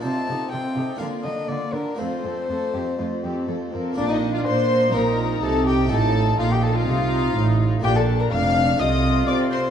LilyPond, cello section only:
\new Staff \with { instrumentName = "Cello section" } { \clef bass \time 4/4 \key bes \major \tempo 4 = 124 c8 c8 c8 c8 d8 d8 d8 d8 | f,8 f,8 f,8 f,8 f,8 f,8 f,8 f,8 | bes,4 bes4 bes,4 c4 | a,4 bes,4 c4 a,4 |
bes,4 f,4 c4 c'4 | }